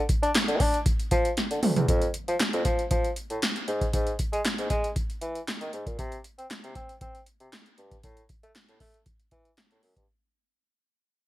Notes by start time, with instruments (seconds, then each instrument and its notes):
0.09 kick, closed hi-hat
0.23 bassoon D4, closed hi-hat
0.34 snare, clap, closed hi-hat
0.48 bassoon D3, closed hi-hat
0.60 bassoon D4, kick, open hi-hat
0.74 closed hi-hat
0.86 kick, closed hi-hat
1.00 closed hi-hat
1.11 bassoon F3, kick, closed hi-hat
1.25 closed hi-hat
1.37 snare, closed hi-hat
1.51 bassoon D3, closed hi-hat
1.62 bassoon D2, mid tom, open hi-hat
1.76 bassoon E2, closed hi-hat, floor tom
1.88 bassoon F2, kick, closed hi-hat
2.02 closed hi-hat
2.14 closed hi-hat
2.28 bassoon F3, closed hi-hat
2.39 snare, clap, closed hi-hat
2.53 bassoon F2, closed hi-hat
2.65 bassoon F3, kick, closed hi-hat
2.79 closed hi-hat
2.91 bassoon F3, kick, closed hi-hat
3.04 closed hi-hat
3.16 closed hi-hat
3.30 bassoon A2, closed hi-hat
3.42 snare, clap, closed hi-hat
3.56 closed hi-hat
3.68 bassoon G#2, closed hi-hat
3.81 kick, closed hi-hat
3.93 bassoon G#2, kick, closed hi-hat
4.07 closed hi-hat
4.19 kick, closed hi-hat
4.33 bassoon G#3, closed hi-hat
4.45 snare, clap, closed hi-hat
4.58 bassoon G#2, closed hi-hat
4.70 bassoon G#3, kick, closed hi-hat
4.84 closed hi-hat
4.96 kick, closed hi-hat
5.10 closed hi-hat
5.21 bassoon E3, closed hi-hat
5.35 closed hi-hat
5.47 snare, clap, closed hi-hat
5.61 bassoon D#3, closed hi-hat
5.73 bassoon G#2, closed hi-hat
5.86 bassoon A#2, kick, closed hi-hat
5.99 bassoon C3, kick, closed hi-hat
6.12 closed hi-hat
6.24 closed hi-hat
6.38 bassoon C4, closed hi-hat
6.50 snare, clap, closed hi-hat
6.64 bassoon C3, closed hi-hat
6.75 bassoon C4, kick, closed hi-hat
6.89 closed hi-hat
7.01 bassoon C4, kick, closed hi-hat
7.15 closed hi-hat
7.26 closed hi-hat
7.40 bassoon C3, closed hi-hat
7.52 snare, clap, closed hi-hat
7.66 closed hi-hat
7.78 bassoon G2, closed hi-hat
7.91 kick, closed hi-hat
8.03 bassoon A2, kick, closed hi-hat
8.17 closed hi-hat
8.29 kick, closed hi-hat
8.43 bassoon A3, closed hi-hat
8.55 snare, clap, closed hi-hat
8.69 bassoon A2, closed hi-hat
8.80 bassoon A3, kick, open hi-hat
8.94 closed hi-hat
9.06 kick, closed hi-hat
9.20 closed hi-hat
9.31 bassoon E3, kick, closed hi-hat
9.45 closed hi-hat
9.57 snare, clap, closed hi-hat
9.71 bassoon A2, closed hi-hat
9.83 bassoon F#2, open hi-hat
9.96 bassoon G2, kick, closed hi-hat